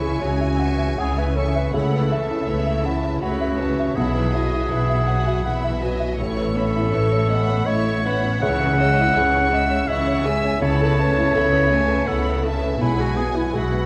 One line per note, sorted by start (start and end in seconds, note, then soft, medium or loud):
0.00 0.13 C#2 soft
0.00 1.70 C#2 soft
0.00 0.13 C#3 soft
0.00 1.72 C#3 soft
0.00 0.22 E3 soft
0.00 1.77 G#3 soft
0.00 0.22 C#4 soft
0.00 3.87 C#4 soft
0.00 0.24 E4 medium
0.00 2.79 E4 soft
0.00 0.33 G#4 soft
0.00 0.20 C#5 soft
0.00 0.72 C#5 soft
0.00 0.14 E5 soft
0.00 0.22 E5 soft
0.00 1.83 E5 soft
0.00 1.70 G#5 medium
0.00 0.22 C#6 soft
0.20 0.90 C#2 soft
0.20 0.89 C#3 soft
0.20 0.61 G#3 soft
0.20 0.61 E4 soft
0.20 1.01 F#4 medium
0.20 1.77 G#4 soft
0.20 0.52 C#5 soft
0.20 0.61 C#5 soft
0.20 0.61 G#5 soft
0.41 0.72 E5 soft
0.59 0.99 E3 soft
0.59 0.99 C#4 soft
0.59 0.99 E5 soft
0.59 0.79 F#5 soft
0.59 0.99 C#6 soft
0.73 1.22 C#5 soft
0.78 1.09 E5 soft
0.98 1.66 C#2 soft
0.98 1.66 C#3 soft
0.98 1.34 G#3 soft
0.98 1.34 E4 soft
0.98 1.20 G#4 medium
0.98 1.35 C#5 soft
0.98 1.18 F#5 soft
0.98 1.77 G#5 soft
0.98 1.35 G#5 soft
1.17 1.37 B4 medium
1.17 1.48 E5 soft
1.23 3.99 C#5 soft
1.36 1.74 E3 soft
1.36 1.74 C#4 soft
1.36 1.58 A4 medium
1.36 1.67 C#5 soft
1.36 1.75 E5 soft
1.36 1.75 C#6 soft
1.55 1.73 B4 medium
1.55 1.74 E5 soft
1.74 3.92 C#2 soft
1.74 2.40 C#2 medium
1.74 3.99 C#3 soft
1.74 2.40 C#3 soft
1.74 2.09 A3 soft
1.74 2.08 E4 soft
1.74 2.87 A4 medium
1.74 2.09 C#5 soft
1.74 2.12 F#5 soft
1.74 2.09 B5 soft
1.93 2.22 B4 soft
1.99 3.99 A3 soft
2.11 2.48 E3 soft
2.11 2.48 C#4 soft
2.11 2.48 E5 soft
2.11 3.22 E5 medium
2.11 2.41 E5 soft
2.11 2.48 A5 soft
2.23 4.45 B3 soft
2.30 2.59 E4 soft
2.47 3.13 C#2 soft
2.47 3.13 C#3 soft
2.47 2.84 A3 soft
2.47 2.84 E4 soft
2.47 3.99 A4 soft
2.47 2.78 B4 soft
2.47 2.85 C#5 soft
2.47 2.84 B5 soft
2.67 2.96 E5 soft
2.83 3.22 E3 soft
2.83 3.22 C#4 soft
2.83 3.23 E4 medium
2.83 3.21 E5 soft
2.83 3.04 F#5 soft
2.83 3.21 A5 soft
2.97 3.45 B4 soft
3.04 3.33 E5 soft
3.21 3.88 C#2 soft
3.21 3.87 C#3 soft
3.21 3.57 A3 soft
3.21 3.56 E4 soft
3.21 3.97 F#4 medium
3.21 3.59 B4 soft
3.21 3.56 C#5 soft
3.21 3.41 F#5 soft
3.21 3.99 A5 soft
3.21 3.56 B5 soft
3.41 3.70 E5 soft
3.47 5.19 B4 soft
3.58 3.95 E3 soft
3.58 3.96 C#4 soft
3.58 3.89 B4 soft
3.58 3.95 C#5 soft
3.58 3.96 E5 soft
3.58 3.96 A5 soft
3.79 3.97 E5 soft
3.95 4.62 B1 medium
3.95 6.15 B1 soft
3.95 6.22 B2 soft
3.95 4.62 B2 medium
3.95 4.31 E3 soft
3.95 4.30 E4 soft
3.95 5.91 G#4 medium
3.95 4.33 E5 medium
3.95 4.31 F#5 soft
3.95 4.31 B5 soft
4.15 4.45 B4 soft
4.21 6.22 F#3 soft
4.32 4.70 F#3 soft
4.32 4.52 E4 soft
4.32 4.70 F#4 soft
4.32 4.71 D#5 soft
4.32 4.70 E5 soft
4.32 4.70 G#5 soft
4.46 8.36 B3 soft
4.53 4.82 E4 soft
4.70 5.36 B1 soft
4.70 5.36 B2 medium
4.70 5.08 E3 soft
4.70 5.07 E4 soft
4.70 6.22 F#4 soft
4.70 5.00 B4 soft
4.70 5.08 E5 soft
4.70 5.08 F#5 soft
4.70 5.08 B5 soft
4.89 5.19 E5 soft
5.07 5.45 F#3 soft
5.07 5.45 F#4 soft
5.07 5.45 E5 soft
5.07 5.26 F#5 soft
5.07 5.45 F#5 medium
5.07 5.44 G#5 soft
5.21 5.69 B4 soft
5.27 5.56 E5 soft
5.44 6.10 B1 soft
5.44 6.10 B2 soft
5.44 5.79 E3 soft
5.44 5.79 E4 soft
5.44 5.82 E5 soft
5.44 5.79 F#5 soft
5.44 6.22 F#5 soft
5.44 5.64 F#5 soft
5.44 5.79 B5 soft
5.64 5.93 E5 soft
5.70 6.91 B4 soft
5.81 6.19 F#3 soft
5.81 6.19 F#4 soft
5.81 6.12 B4 soft
5.81 6.19 D#5 medium
5.81 6.19 E5 soft
5.81 6.19 G#5 soft
5.94 9.84 E4 soft
6.00 6.18 E5 soft
6.18 6.84 A1 medium
6.18 8.38 A1 soft
6.18 8.44 A2 soft
6.18 6.84 A2 medium
6.18 6.53 A3 soft
6.18 6.53 E4 soft
6.18 7.67 A4 medium
6.18 6.53 C#5 soft
6.18 6.93 C#5 medium
6.18 6.53 C#6 soft
6.37 6.67 B4 soft
6.43 8.44 E3 soft
6.55 6.92 B3 soft
6.55 6.92 C#4 soft
6.55 6.85 C#5 soft
6.55 6.92 E5 soft
6.55 6.93 B5 soft
6.68 8.89 C#4 soft
6.76 7.04 E4 soft
6.92 7.58 A1 medium
6.92 7.57 A2 medium
6.92 7.29 A3 soft
6.92 7.29 E4 soft
6.92 8.44 B4 soft
6.92 7.22 B4 soft
6.92 7.30 C#5 soft
6.92 7.30 E5 medium
6.92 7.30 C#6 soft
7.12 7.41 C#5 soft
7.28 7.65 B3 soft
7.28 7.66 C#4 soft
7.28 7.47 D#5 soft
7.28 7.67 E5 soft
7.28 7.66 F#5 medium
7.28 7.67 B5 soft
7.42 7.90 C#5 soft
7.48 7.77 C#5 soft
7.65 8.33 A1 medium
7.65 8.33 A2 medium
7.65 8.01 A3 medium
7.65 8.01 E4 soft
7.65 8.41 C#5 medium
7.65 8.02 C#5 soft
7.65 7.84 D#5 soft
7.65 8.05 E5 medium
7.65 8.44 B5 soft
7.65 8.02 C#6 soft
7.85 8.15 C#5 soft
7.91 9.63 C#5 soft
8.04 8.41 B3 soft
8.04 8.41 C#4 soft
8.04 8.35 B4 soft
8.04 8.42 E5 soft
8.04 8.41 F#5 medium
8.04 8.42 B5 soft
8.24 8.42 C#5 soft
8.41 10.58 C#2 medium
8.41 9.07 C#2 medium
8.41 10.60 C#3 medium
8.41 9.07 C#3 medium
8.41 8.75 E3 medium
8.41 8.75 E4 soft
8.41 8.77 C#5 soft
8.41 8.79 E5 medium
8.41 9.89 F#5 medium
8.41 8.76 C#6 soft
8.61 8.89 G#4 soft
8.66 10.64 G#3 soft
8.78 9.15 G#3 soft
8.78 9.15 C#4 soft
8.78 9.08 C#5 soft
8.78 9.15 D#5 medium
8.78 9.16 E5 soft
8.78 9.16 E6 soft
8.91 12.81 C#4 soft
8.99 9.27 E4 soft
9.14 9.80 C#2 medium
9.14 9.80 C#3 medium
9.14 9.51 E3 soft
9.14 9.51 E4 soft
9.14 10.65 G#4 soft
9.14 9.45 G#4 soft
9.14 9.52 C#5 medium
9.14 9.52 C#5 soft
9.14 9.52 C#6 soft
9.36 9.64 C#5 soft
9.51 9.88 G#3 soft
9.51 9.88 C#4 soft
9.51 9.71 D#5 soft
9.51 9.89 E5 medium
9.51 9.89 E5 soft
9.51 9.89 E6 soft
9.64 10.12 C#5 soft
9.71 10.00 C#5 soft
9.88 10.54 C#2 medium
9.88 10.53 C#3 medium
9.88 10.22 E3 soft
9.88 10.22 E4 medium
9.88 10.23 C#5 soft
9.88 10.07 D#5 soft
9.88 10.61 E5 medium
9.88 10.25 F#5 medium
9.88 10.65 G#5 soft
9.88 10.24 C#6 soft
10.07 10.36 C#5 soft
10.13 12.84 C#5 soft
10.24 10.61 G#3 soft
10.24 10.61 C#4 soft
10.24 10.54 G#4 soft
10.24 10.62 E5 soft
10.24 10.62 G#5 medium
10.24 10.62 E6 soft
10.43 10.62 C#5 soft
10.61 12.77 C#2 medium
10.61 11.27 C#2 medium
10.61 12.84 C#3 medium
10.61 11.26 C#3 medium
10.61 10.95 B3 medium
10.61 10.95 E4 medium
10.61 12.09 C#5 medium
10.61 10.96 C#5 medium
10.61 11.34 A5 medium
10.61 10.96 B5 medium
10.81 11.10 A4 soft
10.86 12.84 A3 soft
10.98 11.35 A3 soft
10.98 11.35 C#4 soft
10.98 11.28 B4 soft
10.98 11.35 E5 soft
10.98 11.35 A5 soft
11.10 13.29 B3 soft
11.17 11.46 E4 soft
11.35 12.00 C#2 medium
11.35 12.00 C#3 medium
11.35 11.72 B3 soft
11.35 11.72 E4 soft
11.35 12.84 A4 soft
11.35 11.64 A4 soft
11.35 11.72 C#5 soft
11.35 11.72 E5 medium
11.35 11.72 B5 soft
11.53 11.82 B4 soft
11.71 12.08 A3 soft
11.71 12.08 C#4 soft
11.71 11.90 C#5 soft
11.71 12.09 E5 soft
11.71 12.08 G#5 medium
11.71 12.09 A5 soft
11.84 12.31 B4 soft
11.88 12.18 B4 soft
12.07 12.73 C#2 medium
12.07 12.73 C#3 medium
12.07 12.42 B3 soft
12.07 12.42 E4 soft
12.07 12.44 A4 medium
12.07 12.26 C#5 soft
12.07 12.43 C#5 soft
12.07 12.44 F#5 soft
12.07 12.84 A5 soft
12.07 12.42 B5 soft
12.26 12.55 B4 soft
12.32 13.86 B4 soft
12.42 12.81 A3 soft
12.42 12.81 C#4 soft
12.42 12.72 A4 soft
12.42 12.81 E5 medium
12.42 12.82 A5 soft
12.46 12.82 E5 soft
12.61 12.80 B4 soft
12.78 13.86 B1 soft
12.78 13.46 B1 medium
12.78 13.86 B2 soft
12.78 13.46 B2 medium
12.78 13.15 G#3 soft
12.78 13.15 E4 soft
12.78 13.02 E4 medium
12.78 13.15 F#5 soft
12.78 13.55 G#5 medium
12.78 13.15 B5 soft
12.97 13.18 F#4 medium
12.97 13.27 G#4 soft
13.06 13.86 F#3 soft
13.15 13.55 B3 soft
13.15 13.55 F#4 soft
13.15 13.38 G#4 medium
13.15 13.46 B4 soft
13.15 13.55 G#5 soft
13.19 13.55 F#5 soft
13.30 13.86 B3 soft
13.30 13.65 E4 soft
13.37 13.57 E4 medium
13.53 13.86 B1 soft
13.53 13.86 B2 soft
13.53 13.86 G#3 soft
13.53 13.86 E4 soft
13.53 13.86 F#4 medium
13.53 13.84 G#4 soft
13.53 13.86 G#4 soft
13.53 13.86 F#5 soft
13.53 13.86 B5 soft
13.71 13.86 B4 soft
13.80 13.86 F#5 soft